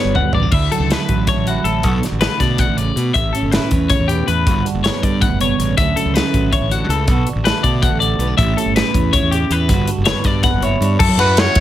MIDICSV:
0, 0, Header, 1, 6, 480
1, 0, Start_track
1, 0, Tempo, 374298
1, 672, Time_signature, 7, 3, 24, 8
1, 14877, End_track
2, 0, Start_track
2, 0, Title_t, "Clean electric guitar"
2, 0, Program_c, 0, 27
2, 0, Note_on_c, 0, 73, 71
2, 184, Note_off_c, 0, 73, 0
2, 202, Note_on_c, 0, 78, 65
2, 437, Note_off_c, 0, 78, 0
2, 444, Note_on_c, 0, 74, 69
2, 660, Note_off_c, 0, 74, 0
2, 660, Note_on_c, 0, 76, 77
2, 907, Note_off_c, 0, 76, 0
2, 919, Note_on_c, 0, 69, 66
2, 1169, Note_off_c, 0, 69, 0
2, 1169, Note_on_c, 0, 71, 67
2, 1642, Note_off_c, 0, 71, 0
2, 1649, Note_on_c, 0, 73, 76
2, 1882, Note_off_c, 0, 73, 0
2, 1892, Note_on_c, 0, 66, 64
2, 2108, Note_on_c, 0, 69, 70
2, 2124, Note_off_c, 0, 66, 0
2, 2593, Note_off_c, 0, 69, 0
2, 2831, Note_on_c, 0, 71, 72
2, 3075, Note_off_c, 0, 71, 0
2, 3079, Note_on_c, 0, 74, 65
2, 3322, Note_off_c, 0, 74, 0
2, 3322, Note_on_c, 0, 78, 76
2, 3556, Note_off_c, 0, 78, 0
2, 3556, Note_on_c, 0, 74, 65
2, 4023, Note_off_c, 0, 74, 0
2, 4028, Note_on_c, 0, 76, 84
2, 4266, Note_on_c, 0, 69, 71
2, 4274, Note_off_c, 0, 76, 0
2, 4508, Note_off_c, 0, 69, 0
2, 4508, Note_on_c, 0, 71, 73
2, 4995, Note_off_c, 0, 71, 0
2, 4997, Note_on_c, 0, 73, 73
2, 5231, Note_on_c, 0, 67, 67
2, 5240, Note_off_c, 0, 73, 0
2, 5476, Note_off_c, 0, 67, 0
2, 5483, Note_on_c, 0, 71, 69
2, 5963, Note_off_c, 0, 71, 0
2, 6206, Note_on_c, 0, 73, 70
2, 6445, Note_off_c, 0, 73, 0
2, 6445, Note_on_c, 0, 74, 62
2, 6685, Note_off_c, 0, 74, 0
2, 6685, Note_on_c, 0, 78, 76
2, 6924, Note_off_c, 0, 78, 0
2, 6941, Note_on_c, 0, 73, 61
2, 7400, Note_off_c, 0, 73, 0
2, 7405, Note_on_c, 0, 76, 82
2, 7645, Note_off_c, 0, 76, 0
2, 7646, Note_on_c, 0, 69, 68
2, 7874, Note_off_c, 0, 69, 0
2, 7874, Note_on_c, 0, 71, 72
2, 8359, Note_off_c, 0, 71, 0
2, 8373, Note_on_c, 0, 73, 77
2, 8608, Note_off_c, 0, 73, 0
2, 8612, Note_on_c, 0, 66, 70
2, 8848, Note_off_c, 0, 66, 0
2, 8849, Note_on_c, 0, 69, 72
2, 9326, Note_off_c, 0, 69, 0
2, 9555, Note_on_c, 0, 71, 78
2, 9790, Note_on_c, 0, 74, 70
2, 9799, Note_off_c, 0, 71, 0
2, 10030, Note_off_c, 0, 74, 0
2, 10030, Note_on_c, 0, 78, 77
2, 10257, Note_off_c, 0, 78, 0
2, 10262, Note_on_c, 0, 74, 66
2, 10735, Note_off_c, 0, 74, 0
2, 10740, Note_on_c, 0, 76, 82
2, 10991, Note_off_c, 0, 76, 0
2, 10991, Note_on_c, 0, 69, 69
2, 11227, Note_off_c, 0, 69, 0
2, 11232, Note_on_c, 0, 71, 76
2, 11707, Note_on_c, 0, 73, 77
2, 11716, Note_off_c, 0, 71, 0
2, 11943, Note_on_c, 0, 67, 69
2, 11953, Note_off_c, 0, 73, 0
2, 12208, Note_off_c, 0, 67, 0
2, 12208, Note_on_c, 0, 71, 77
2, 12682, Note_off_c, 0, 71, 0
2, 12897, Note_on_c, 0, 73, 76
2, 13151, Note_off_c, 0, 73, 0
2, 13151, Note_on_c, 0, 74, 70
2, 13381, Note_off_c, 0, 74, 0
2, 13386, Note_on_c, 0, 78, 77
2, 13630, Note_off_c, 0, 78, 0
2, 13630, Note_on_c, 0, 73, 70
2, 14093, Note_off_c, 0, 73, 0
2, 14098, Note_on_c, 0, 69, 90
2, 14344, Note_off_c, 0, 69, 0
2, 14349, Note_on_c, 0, 66, 82
2, 14827, Note_off_c, 0, 66, 0
2, 14877, End_track
3, 0, Start_track
3, 0, Title_t, "Trumpet"
3, 0, Program_c, 1, 56
3, 14351, Note_on_c, 1, 71, 103
3, 14608, Note_on_c, 1, 73, 105
3, 14627, Note_off_c, 1, 71, 0
3, 14877, Note_off_c, 1, 73, 0
3, 14877, End_track
4, 0, Start_track
4, 0, Title_t, "Clean electric guitar"
4, 0, Program_c, 2, 27
4, 0, Note_on_c, 2, 43, 71
4, 0, Note_on_c, 2, 50, 60
4, 0, Note_on_c, 2, 59, 61
4, 0, Note_on_c, 2, 62, 57
4, 0, Note_on_c, 2, 66, 53
4, 186, Note_off_c, 2, 43, 0
4, 201, Note_on_c, 2, 43, 60
4, 411, Note_off_c, 2, 59, 0
4, 422, Note_off_c, 2, 62, 0
4, 427, Note_on_c, 2, 59, 55
4, 548, Note_off_c, 2, 59, 0
4, 548, Note_on_c, 2, 62, 46
4, 648, Note_off_c, 2, 43, 0
4, 648, Note_off_c, 2, 50, 0
4, 650, Note_off_c, 2, 66, 0
4, 659, Note_on_c, 2, 50, 67
4, 670, Note_off_c, 2, 62, 0
4, 674, Note_on_c, 2, 64, 50
4, 911, Note_on_c, 2, 54, 56
4, 1169, Note_on_c, 2, 57, 55
4, 1396, Note_off_c, 2, 54, 0
4, 1401, Note_on_c, 2, 54, 62
4, 1646, Note_off_c, 2, 57, 0
4, 1651, Note_on_c, 2, 57, 55
4, 1872, Note_off_c, 2, 64, 0
4, 1904, Note_on_c, 2, 64, 55
4, 2119, Note_on_c, 2, 61, 49
4, 2323, Note_off_c, 2, 50, 0
4, 2329, Note_off_c, 2, 61, 0
4, 2356, Note_on_c, 2, 47, 68
4, 2369, Note_off_c, 2, 64, 0
4, 2374, Note_on_c, 2, 66, 67
4, 2394, Note_off_c, 2, 57, 0
4, 2579, Note_off_c, 2, 54, 0
4, 2584, Note_on_c, 2, 50, 54
4, 2596, Note_off_c, 2, 47, 0
4, 2838, Note_on_c, 2, 57, 56
4, 3071, Note_off_c, 2, 50, 0
4, 3100, Note_on_c, 2, 50, 60
4, 3312, Note_off_c, 2, 50, 0
4, 3327, Note_on_c, 2, 50, 58
4, 3554, Note_on_c, 2, 49, 60
4, 3563, Note_off_c, 2, 50, 0
4, 3797, Note_off_c, 2, 49, 0
4, 3817, Note_on_c, 2, 47, 55
4, 4011, Note_off_c, 2, 57, 0
4, 4048, Note_off_c, 2, 47, 0
4, 4055, Note_on_c, 2, 45, 71
4, 4058, Note_off_c, 2, 66, 0
4, 4063, Note_on_c, 2, 67, 49
4, 4301, Note_on_c, 2, 61, 56
4, 4548, Note_on_c, 2, 64, 56
4, 4767, Note_off_c, 2, 61, 0
4, 4782, Note_on_c, 2, 61, 61
4, 5026, Note_on_c, 2, 49, 59
4, 5252, Note_off_c, 2, 49, 0
4, 5257, Note_on_c, 2, 47, 62
4, 5458, Note_off_c, 2, 45, 0
4, 5468, Note_off_c, 2, 47, 0
4, 5473, Note_on_c, 2, 45, 56
4, 5703, Note_off_c, 2, 67, 0
4, 5704, Note_off_c, 2, 61, 0
4, 5707, Note_off_c, 2, 64, 0
4, 5718, Note_off_c, 2, 45, 0
4, 5736, Note_on_c, 2, 43, 71
4, 5745, Note_on_c, 2, 66, 57
4, 5977, Note_on_c, 2, 50, 59
4, 6227, Note_on_c, 2, 59, 58
4, 6436, Note_off_c, 2, 50, 0
4, 6451, Note_on_c, 2, 50, 60
4, 6671, Note_on_c, 2, 45, 60
4, 6917, Note_off_c, 2, 45, 0
4, 6932, Note_on_c, 2, 47, 60
4, 7157, Note_off_c, 2, 47, 0
4, 7162, Note_on_c, 2, 49, 57
4, 7384, Note_off_c, 2, 43, 0
4, 7387, Note_off_c, 2, 59, 0
4, 7403, Note_off_c, 2, 49, 0
4, 7408, Note_off_c, 2, 50, 0
4, 7424, Note_on_c, 2, 50, 67
4, 7437, Note_on_c, 2, 54, 52
4, 7442, Note_on_c, 2, 57, 58
4, 7447, Note_on_c, 2, 61, 62
4, 7456, Note_off_c, 2, 66, 0
4, 7462, Note_on_c, 2, 64, 54
4, 7657, Note_off_c, 2, 54, 0
4, 7662, Note_on_c, 2, 54, 58
4, 7905, Note_off_c, 2, 57, 0
4, 7910, Note_on_c, 2, 57, 60
4, 8132, Note_off_c, 2, 54, 0
4, 8137, Note_on_c, 2, 54, 59
4, 8366, Note_off_c, 2, 54, 0
4, 8371, Note_on_c, 2, 52, 60
4, 8576, Note_off_c, 2, 50, 0
4, 8586, Note_off_c, 2, 52, 0
4, 8591, Note_on_c, 2, 50, 59
4, 8837, Note_off_c, 2, 50, 0
4, 8855, Note_on_c, 2, 49, 59
4, 9078, Note_off_c, 2, 61, 0
4, 9089, Note_off_c, 2, 49, 0
4, 9109, Note_off_c, 2, 64, 0
4, 9117, Note_on_c, 2, 47, 76
4, 9124, Note_on_c, 2, 66, 60
4, 9157, Note_off_c, 2, 57, 0
4, 9341, Note_off_c, 2, 47, 0
4, 9342, Note_on_c, 2, 50, 58
4, 9600, Note_on_c, 2, 57, 60
4, 9805, Note_off_c, 2, 50, 0
4, 9821, Note_on_c, 2, 50, 62
4, 10052, Note_off_c, 2, 57, 0
4, 10067, Note_on_c, 2, 57, 60
4, 10273, Note_off_c, 2, 66, 0
4, 10278, Note_on_c, 2, 66, 58
4, 10514, Note_on_c, 2, 59, 57
4, 10613, Note_off_c, 2, 59, 0
4, 10613, Note_on_c, 2, 62, 47
4, 10733, Note_on_c, 2, 45, 77
4, 10737, Note_off_c, 2, 57, 0
4, 10737, Note_off_c, 2, 62, 0
4, 10742, Note_on_c, 2, 61, 50
4, 10742, Note_on_c, 2, 64, 59
4, 10762, Note_off_c, 2, 66, 0
4, 10767, Note_on_c, 2, 67, 67
4, 10771, Note_off_c, 2, 50, 0
4, 10956, Note_off_c, 2, 61, 0
4, 10972, Note_on_c, 2, 61, 58
4, 11211, Note_off_c, 2, 64, 0
4, 11227, Note_on_c, 2, 64, 58
4, 11443, Note_off_c, 2, 61, 0
4, 11458, Note_on_c, 2, 61, 62
4, 11707, Note_off_c, 2, 64, 0
4, 11723, Note_on_c, 2, 64, 58
4, 11962, Note_off_c, 2, 67, 0
4, 11979, Note_on_c, 2, 67, 59
4, 12174, Note_off_c, 2, 67, 0
4, 12189, Note_on_c, 2, 67, 65
4, 12395, Note_off_c, 2, 45, 0
4, 12399, Note_off_c, 2, 61, 0
4, 12405, Note_off_c, 2, 67, 0
4, 12411, Note_off_c, 2, 64, 0
4, 12439, Note_on_c, 2, 66, 67
4, 12445, Note_on_c, 2, 43, 77
4, 12662, Note_on_c, 2, 50, 61
4, 12910, Note_on_c, 2, 59, 61
4, 13130, Note_off_c, 2, 50, 0
4, 13145, Note_on_c, 2, 50, 68
4, 13356, Note_off_c, 2, 59, 0
4, 13372, Note_on_c, 2, 59, 62
4, 13626, Note_off_c, 2, 66, 0
4, 13631, Note_on_c, 2, 64, 59
4, 13888, Note_on_c, 2, 62, 57
4, 14072, Note_off_c, 2, 59, 0
4, 14086, Note_off_c, 2, 43, 0
4, 14091, Note_off_c, 2, 62, 0
4, 14107, Note_off_c, 2, 50, 0
4, 14877, Note_off_c, 2, 64, 0
4, 14877, End_track
5, 0, Start_track
5, 0, Title_t, "Fingered electric bass"
5, 0, Program_c, 3, 33
5, 57, Note_on_c, 3, 31, 75
5, 250, Note_off_c, 3, 31, 0
5, 419, Note_on_c, 3, 33, 77
5, 611, Note_off_c, 3, 33, 0
5, 665, Note_on_c, 3, 38, 77
5, 854, Note_off_c, 3, 38, 0
5, 1021, Note_on_c, 3, 37, 75
5, 1212, Note_off_c, 3, 37, 0
5, 1396, Note_on_c, 3, 33, 77
5, 1675, Note_off_c, 3, 33, 0
5, 1752, Note_on_c, 3, 33, 72
5, 2033, Note_off_c, 3, 33, 0
5, 2103, Note_on_c, 3, 33, 84
5, 2355, Note_off_c, 3, 33, 0
5, 2355, Note_on_c, 3, 35, 79
5, 2542, Note_off_c, 3, 35, 0
5, 2716, Note_on_c, 3, 33, 85
5, 2903, Note_off_c, 3, 33, 0
5, 3083, Note_on_c, 3, 47, 78
5, 3361, Note_off_c, 3, 47, 0
5, 3440, Note_on_c, 3, 33, 75
5, 3720, Note_off_c, 3, 33, 0
5, 3797, Note_on_c, 3, 47, 87
5, 3985, Note_off_c, 3, 47, 0
5, 4039, Note_on_c, 3, 33, 82
5, 4226, Note_off_c, 3, 33, 0
5, 4388, Note_on_c, 3, 31, 80
5, 4580, Note_off_c, 3, 31, 0
5, 4763, Note_on_c, 3, 40, 79
5, 5042, Note_off_c, 3, 40, 0
5, 5123, Note_on_c, 3, 40, 76
5, 5403, Note_off_c, 3, 40, 0
5, 5490, Note_on_c, 3, 40, 84
5, 5726, Note_on_c, 3, 31, 84
5, 5745, Note_off_c, 3, 40, 0
5, 5911, Note_off_c, 3, 31, 0
5, 6085, Note_on_c, 3, 30, 84
5, 6271, Note_off_c, 3, 30, 0
5, 6452, Note_on_c, 3, 43, 79
5, 6728, Note_off_c, 3, 43, 0
5, 6793, Note_on_c, 3, 30, 73
5, 7077, Note_off_c, 3, 30, 0
5, 7160, Note_on_c, 3, 33, 86
5, 7348, Note_off_c, 3, 33, 0
5, 7409, Note_on_c, 3, 38, 82
5, 7593, Note_off_c, 3, 38, 0
5, 7762, Note_on_c, 3, 37, 78
5, 7949, Note_off_c, 3, 37, 0
5, 8128, Note_on_c, 3, 33, 80
5, 8406, Note_off_c, 3, 33, 0
5, 8472, Note_on_c, 3, 33, 75
5, 8756, Note_off_c, 3, 33, 0
5, 8830, Note_on_c, 3, 37, 87
5, 9077, Note_off_c, 3, 37, 0
5, 9077, Note_on_c, 3, 35, 81
5, 9266, Note_off_c, 3, 35, 0
5, 9432, Note_on_c, 3, 33, 89
5, 9622, Note_off_c, 3, 33, 0
5, 9792, Note_on_c, 3, 47, 85
5, 10076, Note_off_c, 3, 47, 0
5, 10156, Note_on_c, 3, 33, 75
5, 10438, Note_off_c, 3, 33, 0
5, 10497, Note_on_c, 3, 35, 84
5, 10693, Note_off_c, 3, 35, 0
5, 10749, Note_on_c, 3, 33, 89
5, 10941, Note_off_c, 3, 33, 0
5, 11100, Note_on_c, 3, 31, 81
5, 11294, Note_off_c, 3, 31, 0
5, 11466, Note_on_c, 3, 40, 84
5, 11751, Note_off_c, 3, 40, 0
5, 11821, Note_on_c, 3, 40, 76
5, 12108, Note_off_c, 3, 40, 0
5, 12184, Note_on_c, 3, 40, 87
5, 12433, Note_on_c, 3, 31, 87
5, 12452, Note_off_c, 3, 40, 0
5, 12621, Note_off_c, 3, 31, 0
5, 12799, Note_on_c, 3, 30, 88
5, 12984, Note_off_c, 3, 30, 0
5, 13138, Note_on_c, 3, 43, 83
5, 13424, Note_off_c, 3, 43, 0
5, 13491, Note_on_c, 3, 30, 78
5, 13779, Note_off_c, 3, 30, 0
5, 13858, Note_on_c, 3, 43, 95
5, 14050, Note_off_c, 3, 43, 0
5, 14105, Note_on_c, 3, 42, 93
5, 14200, Note_off_c, 3, 42, 0
5, 14215, Note_on_c, 3, 54, 83
5, 14314, Note_off_c, 3, 54, 0
5, 14326, Note_on_c, 3, 42, 89
5, 14707, Note_off_c, 3, 42, 0
5, 14819, Note_on_c, 3, 40, 105
5, 14877, Note_off_c, 3, 40, 0
5, 14877, End_track
6, 0, Start_track
6, 0, Title_t, "Drums"
6, 193, Note_on_c, 9, 43, 78
6, 321, Note_off_c, 9, 43, 0
6, 421, Note_on_c, 9, 43, 82
6, 550, Note_off_c, 9, 43, 0
6, 661, Note_on_c, 9, 49, 80
6, 670, Note_on_c, 9, 36, 92
6, 789, Note_off_c, 9, 49, 0
6, 798, Note_off_c, 9, 36, 0
6, 922, Note_on_c, 9, 42, 52
6, 1050, Note_off_c, 9, 42, 0
6, 1161, Note_on_c, 9, 42, 69
6, 1175, Note_on_c, 9, 38, 90
6, 1289, Note_off_c, 9, 42, 0
6, 1303, Note_off_c, 9, 38, 0
6, 1393, Note_on_c, 9, 42, 50
6, 1397, Note_on_c, 9, 36, 68
6, 1521, Note_off_c, 9, 42, 0
6, 1525, Note_off_c, 9, 36, 0
6, 1631, Note_on_c, 9, 42, 71
6, 1635, Note_on_c, 9, 36, 88
6, 1645, Note_on_c, 9, 38, 33
6, 1759, Note_off_c, 9, 42, 0
6, 1763, Note_off_c, 9, 36, 0
6, 1773, Note_off_c, 9, 38, 0
6, 1882, Note_on_c, 9, 42, 53
6, 2011, Note_off_c, 9, 42, 0
6, 2117, Note_on_c, 9, 42, 57
6, 2246, Note_off_c, 9, 42, 0
6, 2351, Note_on_c, 9, 42, 74
6, 2359, Note_on_c, 9, 36, 94
6, 2480, Note_off_c, 9, 42, 0
6, 2487, Note_off_c, 9, 36, 0
6, 2605, Note_on_c, 9, 42, 61
6, 2619, Note_on_c, 9, 38, 30
6, 2734, Note_off_c, 9, 42, 0
6, 2748, Note_off_c, 9, 38, 0
6, 2831, Note_on_c, 9, 42, 78
6, 2845, Note_on_c, 9, 38, 103
6, 2959, Note_off_c, 9, 42, 0
6, 2973, Note_off_c, 9, 38, 0
6, 3078, Note_on_c, 9, 36, 69
6, 3081, Note_on_c, 9, 42, 59
6, 3095, Note_on_c, 9, 38, 29
6, 3207, Note_off_c, 9, 36, 0
6, 3209, Note_off_c, 9, 42, 0
6, 3223, Note_off_c, 9, 38, 0
6, 3313, Note_on_c, 9, 42, 76
6, 3320, Note_on_c, 9, 36, 95
6, 3441, Note_off_c, 9, 42, 0
6, 3448, Note_off_c, 9, 36, 0
6, 3563, Note_on_c, 9, 42, 57
6, 3691, Note_off_c, 9, 42, 0
6, 3808, Note_on_c, 9, 42, 58
6, 3937, Note_off_c, 9, 42, 0
6, 4045, Note_on_c, 9, 36, 97
6, 4054, Note_on_c, 9, 42, 75
6, 4173, Note_off_c, 9, 36, 0
6, 4182, Note_off_c, 9, 42, 0
6, 4292, Note_on_c, 9, 42, 60
6, 4420, Note_off_c, 9, 42, 0
6, 4518, Note_on_c, 9, 42, 69
6, 4533, Note_on_c, 9, 38, 97
6, 4647, Note_off_c, 9, 42, 0
6, 4661, Note_off_c, 9, 38, 0
6, 4756, Note_on_c, 9, 42, 57
6, 4763, Note_on_c, 9, 36, 66
6, 4884, Note_off_c, 9, 42, 0
6, 4891, Note_off_c, 9, 36, 0
6, 4995, Note_on_c, 9, 42, 74
6, 5003, Note_on_c, 9, 36, 96
6, 5124, Note_off_c, 9, 42, 0
6, 5131, Note_off_c, 9, 36, 0
6, 5248, Note_on_c, 9, 42, 53
6, 5376, Note_off_c, 9, 42, 0
6, 5488, Note_on_c, 9, 42, 54
6, 5616, Note_off_c, 9, 42, 0
6, 5729, Note_on_c, 9, 36, 97
6, 5730, Note_on_c, 9, 42, 69
6, 5857, Note_off_c, 9, 36, 0
6, 5858, Note_off_c, 9, 42, 0
6, 5978, Note_on_c, 9, 42, 54
6, 6107, Note_off_c, 9, 42, 0
6, 6215, Note_on_c, 9, 42, 69
6, 6229, Note_on_c, 9, 38, 97
6, 6343, Note_off_c, 9, 42, 0
6, 6357, Note_off_c, 9, 38, 0
6, 6454, Note_on_c, 9, 36, 67
6, 6457, Note_on_c, 9, 42, 57
6, 6582, Note_off_c, 9, 36, 0
6, 6586, Note_off_c, 9, 42, 0
6, 6690, Note_on_c, 9, 42, 74
6, 6692, Note_on_c, 9, 36, 94
6, 6818, Note_off_c, 9, 42, 0
6, 6820, Note_off_c, 9, 36, 0
6, 6933, Note_on_c, 9, 42, 61
6, 7061, Note_off_c, 9, 42, 0
6, 7178, Note_on_c, 9, 42, 58
6, 7306, Note_off_c, 9, 42, 0
6, 7408, Note_on_c, 9, 42, 76
6, 7411, Note_on_c, 9, 36, 96
6, 7536, Note_off_c, 9, 42, 0
6, 7539, Note_off_c, 9, 36, 0
6, 7654, Note_on_c, 9, 42, 62
6, 7783, Note_off_c, 9, 42, 0
6, 7895, Note_on_c, 9, 42, 78
6, 7909, Note_on_c, 9, 38, 100
6, 8023, Note_off_c, 9, 42, 0
6, 8037, Note_off_c, 9, 38, 0
6, 8130, Note_on_c, 9, 36, 69
6, 8130, Note_on_c, 9, 42, 58
6, 8258, Note_off_c, 9, 42, 0
6, 8259, Note_off_c, 9, 36, 0
6, 8368, Note_on_c, 9, 36, 99
6, 8369, Note_on_c, 9, 42, 77
6, 8497, Note_off_c, 9, 36, 0
6, 8497, Note_off_c, 9, 42, 0
6, 8610, Note_on_c, 9, 42, 58
6, 8739, Note_off_c, 9, 42, 0
6, 8851, Note_on_c, 9, 42, 60
6, 8979, Note_off_c, 9, 42, 0
6, 9074, Note_on_c, 9, 42, 76
6, 9078, Note_on_c, 9, 36, 99
6, 9202, Note_off_c, 9, 42, 0
6, 9206, Note_off_c, 9, 36, 0
6, 9319, Note_on_c, 9, 42, 54
6, 9447, Note_off_c, 9, 42, 0
6, 9561, Note_on_c, 9, 42, 77
6, 9575, Note_on_c, 9, 38, 97
6, 9689, Note_off_c, 9, 42, 0
6, 9703, Note_off_c, 9, 38, 0
6, 9796, Note_on_c, 9, 36, 72
6, 9799, Note_on_c, 9, 42, 53
6, 9924, Note_off_c, 9, 36, 0
6, 9927, Note_off_c, 9, 42, 0
6, 10037, Note_on_c, 9, 36, 104
6, 10045, Note_on_c, 9, 42, 76
6, 10165, Note_off_c, 9, 36, 0
6, 10173, Note_off_c, 9, 42, 0
6, 10283, Note_on_c, 9, 42, 52
6, 10411, Note_off_c, 9, 42, 0
6, 10514, Note_on_c, 9, 42, 59
6, 10642, Note_off_c, 9, 42, 0
6, 10754, Note_on_c, 9, 36, 101
6, 10763, Note_on_c, 9, 42, 77
6, 10882, Note_off_c, 9, 36, 0
6, 10891, Note_off_c, 9, 42, 0
6, 11004, Note_on_c, 9, 42, 60
6, 11132, Note_off_c, 9, 42, 0
6, 11235, Note_on_c, 9, 42, 82
6, 11249, Note_on_c, 9, 38, 105
6, 11363, Note_off_c, 9, 42, 0
6, 11377, Note_off_c, 9, 38, 0
6, 11470, Note_on_c, 9, 36, 74
6, 11477, Note_on_c, 9, 42, 59
6, 11598, Note_off_c, 9, 36, 0
6, 11605, Note_off_c, 9, 42, 0
6, 11713, Note_on_c, 9, 36, 104
6, 11718, Note_on_c, 9, 42, 84
6, 11841, Note_off_c, 9, 36, 0
6, 11846, Note_off_c, 9, 42, 0
6, 11958, Note_on_c, 9, 42, 61
6, 12086, Note_off_c, 9, 42, 0
6, 12192, Note_on_c, 9, 42, 64
6, 12320, Note_off_c, 9, 42, 0
6, 12426, Note_on_c, 9, 42, 85
6, 12429, Note_on_c, 9, 36, 98
6, 12555, Note_off_c, 9, 42, 0
6, 12557, Note_off_c, 9, 36, 0
6, 12664, Note_on_c, 9, 42, 59
6, 12792, Note_off_c, 9, 42, 0
6, 12894, Note_on_c, 9, 42, 77
6, 12908, Note_on_c, 9, 38, 106
6, 13022, Note_off_c, 9, 42, 0
6, 13036, Note_off_c, 9, 38, 0
6, 13132, Note_on_c, 9, 42, 58
6, 13141, Note_on_c, 9, 36, 76
6, 13146, Note_on_c, 9, 38, 31
6, 13261, Note_off_c, 9, 42, 0
6, 13269, Note_off_c, 9, 36, 0
6, 13275, Note_off_c, 9, 38, 0
6, 13377, Note_on_c, 9, 42, 75
6, 13384, Note_on_c, 9, 36, 104
6, 13391, Note_on_c, 9, 38, 34
6, 13505, Note_off_c, 9, 42, 0
6, 13512, Note_off_c, 9, 36, 0
6, 13520, Note_off_c, 9, 38, 0
6, 13625, Note_on_c, 9, 42, 56
6, 13754, Note_off_c, 9, 42, 0
6, 13875, Note_on_c, 9, 42, 56
6, 14003, Note_off_c, 9, 42, 0
6, 14103, Note_on_c, 9, 49, 126
6, 14107, Note_on_c, 9, 36, 116
6, 14232, Note_off_c, 9, 49, 0
6, 14235, Note_off_c, 9, 36, 0
6, 14347, Note_on_c, 9, 51, 81
6, 14361, Note_on_c, 9, 38, 37
6, 14475, Note_off_c, 9, 51, 0
6, 14489, Note_off_c, 9, 38, 0
6, 14581, Note_on_c, 9, 51, 108
6, 14595, Note_on_c, 9, 38, 119
6, 14710, Note_off_c, 9, 51, 0
6, 14724, Note_off_c, 9, 38, 0
6, 14816, Note_on_c, 9, 51, 80
6, 14824, Note_on_c, 9, 36, 82
6, 14830, Note_on_c, 9, 38, 37
6, 14877, Note_off_c, 9, 36, 0
6, 14877, Note_off_c, 9, 38, 0
6, 14877, Note_off_c, 9, 51, 0
6, 14877, End_track
0, 0, End_of_file